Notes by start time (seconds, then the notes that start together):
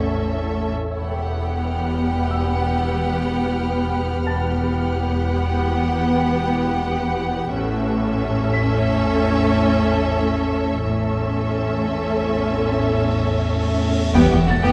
Already playing: A1 E2 A2 C#4 A4 C#5 E5
0.95 E1 E2 B3 G4 B4 F#5 B5
1.62 F6
2.31 E6
4.25 E1 E2 B3 G4 B4 F#5 A5 A6
5.80 F#6
7.53 A1 E2 A2 C#4 A4 C#5 E5 C#6 E6
8.54 B6
10.84 A1 E2 A2 C#4 A4 C#5 E5, cymbal swell
11.72 C6
14.14 E1 E2 E3 G3 B3 G4 B4 F#5 E6 B6, impact
14.31 E2 B3 G4
14.47 E1 E2 B3 F#4 A6
14.62 E2 B3 G4